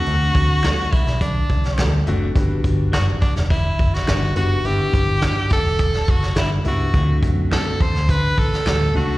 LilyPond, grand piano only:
\new Staff \with { instrumentName = "Grand piano" } { \time 4/4 \key d \mixolydian \tempo 4 = 105 <a c' d' e' fis'>4. r2 <a c' d' fis'>8 | <g b d' fis'>4. r2 <g b d' fis'>8 | <g b d' e'>4. r2 <g b d' e'>8 | <a c' d' f' fis'>4. r2 <a c' d' fis'>8 | }